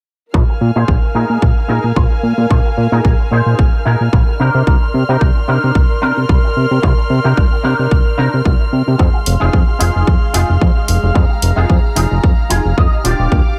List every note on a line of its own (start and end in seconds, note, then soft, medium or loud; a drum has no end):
0.34 0.44 A#1 medium
0.34 4.36 A#4 medium
0.34 4.36 F5 medium
0.34 4.36 G#5 medium
0.34 13.59 F6 medium
0.34 muted clean electric guitar stroke loud
0.34 kick loud
0.48 muted clean electric guitar stroke soft
0.61 0.71 A#2 medium
0.76 0.84 A#2 medium
0.76 0.88 D#4 medium
0.76 0.89 G#4 medium
0.76 0.89 C5 medium
0.88 0.98 A#1 medium
0.88 kick loud
1.02 muted clean electric guitar stroke soft
1.14 1.25 A#2 medium
1.14 1.42 D#4 medium
1.14 1.42 G#4 medium
1.14 1.43 A#4 medium
1.30 1.38 A#2 medium
1.42 1.52 A#1 medium
1.42 kick loud
1.68 1.79 A#2 medium
1.68 1.84 D#4 medium
1.68 1.84 G#4 medium
1.68 1.84 A#4 loud
1.84 1.92 A#2 medium
1.95 2.06 A#1 loud
1.95 muted clean electric guitar stroke medium
1.95 kick loud
2.10 muted clean electric guitar stroke soft
2.23 2.33 A#2 medium
2.38 2.46 A#2 medium
2.38 muted clean electric guitar stroke soft
2.50 2.60 A#1 medium
2.50 muted clean electric guitar stroke loud
2.50 kick loud
2.65 muted clean electric guitar stroke soft
2.77 2.87 A#2 medium
2.92 3.00 A#2 medium
2.92 3.05 D#4 medium
2.92 3.05 G#4 medium
2.92 3.05 A#4 medium
3.05 3.14 A#1 medium
3.05 kick loud
3.19 muted clean electric guitar stroke soft
3.31 3.41 A#2 medium
3.31 3.59 D#4 medium
3.31 3.59 G#4 medium
3.31 3.59 C5 medium
3.46 3.55 A#2 medium
3.59 3.69 A#1 medium
3.59 kick loud
3.85 3.96 A#2 medium
3.85 4.00 D#4 loud
3.85 4.01 G#4 medium
3.85 4.01 A#4 loud
4.01 4.09 A#2 medium
4.12 4.23 A#1 loud
4.12 muted clean electric guitar stroke medium
4.12 kick loud
4.27 muted clean electric guitar stroke soft
4.39 4.50 C3 medium
4.39 4.73 D4 medium
4.39 4.73 D#4 medium
4.39 8.96 A#4 medium
4.39 4.73 A#4 medium
4.39 8.96 D5 medium
4.39 8.96 C6 medium
4.54 4.63 C3 medium
4.67 4.77 C2 medium
4.67 kick loud
4.81 muted clean electric guitar stroke soft
4.94 5.04 C3 medium
5.09 5.17 C3 loud
5.09 5.21 D4 medium
5.09 5.21 D#4 medium
5.09 5.22 A#4 medium
5.21 5.31 C2 medium
5.21 kick loud
5.36 muted clean electric guitar stroke soft
5.48 5.58 C3 medium
5.48 5.75 D4 medium
5.48 5.75 D#4 medium
5.48 5.76 A#4 medium
5.64 5.71 C3 medium
5.75 5.85 C2 medium
5.75 kick loud
6.02 6.12 C3 medium
6.02 6.17 D4 loud
6.02 6.17 D#4 medium
6.02 6.17 A#4 loud
6.17 6.25 C3 medium
6.29 6.39 C2 loud
6.29 muted clean electric guitar stroke medium
6.29 kick loud
6.44 muted clean electric guitar stroke soft
6.57 6.66 C3 medium
6.71 6.79 C3 medium
6.71 muted clean electric guitar stroke soft
6.82 6.93 C2 loud
6.82 muted clean electric guitar stroke loud
6.82 kick loud
6.97 muted clean electric guitar stroke soft
7.10 7.20 C3 medium
7.24 7.33 C3 medium
7.24 7.37 D4 medium
7.24 7.37 D#4 medium
7.24 7.37 A#4 medium
7.37 7.47 C2 medium
7.37 kick loud
7.51 muted clean electric guitar stroke soft
7.63 7.74 C3 medium
7.63 7.91 D4 medium
7.63 7.91 D#4 medium
7.63 7.91 A#4 medium
7.79 7.87 C3 medium
7.91 8.01 C2 medium
7.91 kick loud
8.17 8.28 C3 medium
8.17 8.33 D4 loud
8.17 8.33 D#4 medium
8.17 8.33 A#4 loud
8.34 8.42 C3 medium
8.45 8.55 C2 loud
8.45 muted clean electric guitar stroke medium
8.45 kick loud
8.59 muted clean electric guitar stroke soft
8.73 8.82 C3 medium
8.86 8.96 C3 medium
8.86 muted clean electric guitar stroke soft
8.98 9.09 F2 medium
8.98 13.01 G#3 medium
8.98 13.01 F5 medium
8.98 11.13 C6 medium
8.98 muted clean electric guitar stroke medium
8.98 kick loud
9.13 muted clean electric guitar stroke soft
9.26 9.37 F1 medium
9.26 open hi-hat medium
9.40 9.50 F1 medium
9.40 9.53 D#4 medium
9.40 9.53 F4 medium
9.40 9.53 G#4 medium
9.53 9.63 F2 medium
9.53 kick loud
9.67 muted clean electric guitar stroke soft
9.79 9.91 F1 medium
9.79 10.07 D#4 medium
9.79 10.07 F4 medium
9.79 10.07 G#4 medium
9.79 open hi-hat medium
9.96 10.04 F1 medium
10.07 10.17 F2 medium
10.07 kick loud
10.33 10.44 F1 medium
10.33 10.49 D#4 loud
10.33 10.49 F4 medium
10.33 10.49 G#4 loud
10.33 open hi-hat loud
10.50 10.58 F1 medium
10.60 10.71 F2 loud
10.60 muted clean electric guitar stroke medium
10.60 kick loud
10.75 muted clean electric guitar stroke soft
10.88 10.98 F1 medium
10.88 open hi-hat medium
11.02 11.11 F1 medium
11.02 muted clean electric guitar stroke soft
11.14 11.25 F2 loud
11.14 13.03 A#5 medium
11.14 muted clean electric guitar stroke loud
11.14 kick loud
11.29 muted clean electric guitar stroke soft
11.42 11.52 F1 medium
11.42 open hi-hat medium
11.56 11.65 F1 medium
11.56 11.69 D#4 medium
11.56 11.69 F4 medium
11.56 11.70 G#4 medium
11.70 11.79 F2 medium
11.70 kick loud
11.84 muted clean electric guitar stroke soft
11.95 12.06 F1 medium
11.95 12.23 D#4 medium
11.95 12.23 F4 medium
11.95 12.24 G#4 medium
11.95 open hi-hat medium
12.11 12.20 F1 medium
12.23 12.33 F2 medium
12.23 kick loud
12.50 12.60 F1 medium
12.50 12.65 D#4 loud
12.50 12.65 F4 loud
12.50 12.66 G#4 loud
12.50 12.76 F5 medium
12.50 open hi-hat medium
12.65 12.73 F1 medium
12.77 12.88 F2 loud
12.77 13.03 D#5 medium
12.77 muted clean electric guitar stroke medium
12.77 kick loud
12.92 muted clean electric guitar stroke soft
13.04 13.14 D#1 medium
13.04 13.37 D4 medium
13.04 13.38 F4 medium
13.04 13.38 G4 medium
13.04 13.59 G4 medium
13.04 13.30 D5 medium
13.04 13.59 F5 medium
13.04 13.59 D6 medium
13.04 open hi-hat medium
13.19 13.28 D#1 medium
13.32 13.42 D#2 medium
13.32 kick loud
13.46 muted clean electric guitar stroke soft